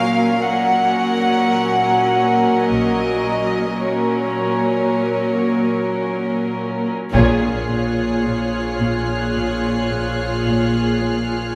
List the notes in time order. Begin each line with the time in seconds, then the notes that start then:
Already playing: A#2 F#3 A#3 C#4 A#4 F5
0.45 F#3 A#3 C#4 A#4 F#5
2.69 A#1 A#2 D#5
3.79 F#3 A#3 C#4 A#4 C#5
7.12 A#1 A#2 F4 G#4 C#5 F6 F#6 C7, taiko
7.69 A#2
8.24 A#2
8.80 A#2
9.35 A#2
9.91 A#2
10.46 A#2
11.02 A#3